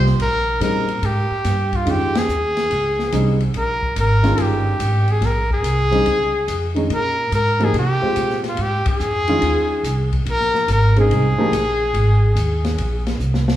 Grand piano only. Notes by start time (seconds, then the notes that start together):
Already playing: G3 C4 F4 G4
0.60 C#3 G3 C4 D#4
1.86 D#3 G#3 C#4 F4
3.12 C#3 G3 C4 D#4
4.23 D#3 G#3 C#4 F4
5.91 C#3 G3 C4 D#4
6.75 D#3 G#3 C#4 D#4
7.60 F3 A#3 D#4 G4
8.02 G#3 C4 F4 G4
9.28 D#3 G#3 C#4 F4
10.96 C#3 G#3 C4 D#4
11.38 F3 A#3 D#4 G4